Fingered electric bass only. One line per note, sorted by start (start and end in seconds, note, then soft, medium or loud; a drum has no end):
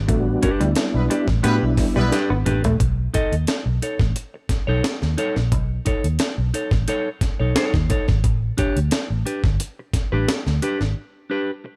0.08 0.35 A1 loud
0.61 0.73 D2 medium
0.94 1.07 B1 loud
1.28 1.41 A1 loud
1.44 1.58 A2 loud
1.63 1.75 B1 medium
1.97 2.09 B1 medium
2.30 2.43 G#1 medium
2.46 2.64 A1 medium
2.64 2.77 A#1 medium
2.80 3.07 B1 medium
3.32 3.45 D#2 medium
3.66 3.78 B1 medium
4.00 4.12 A1 medium
4.50 muted fingered electric bass stroke soft
4.68 4.81 B1 medium
5.02 5.15 D#2 medium
5.36 5.52 A#1 medium
5.52 5.79 B1 medium
6.04 6.17 D#2 medium
6.38 6.51 B1 medium
6.71 6.84 A1 medium
7.21 muted fingered electric bass stroke soft
7.40 7.53 B1 medium
7.74 7.87 D#2 medium
8.09 8.24 G#1 medium
8.24 8.51 A1 loud
8.76 8.89 D2 medium
9.10 9.23 A1 medium
9.44 9.56 G1 medium
9.93 muted fingered electric bass stroke soft
10.13 10.25 A1 medium
10.46 10.59 D2 medium
10.81 10.93 G#1 medium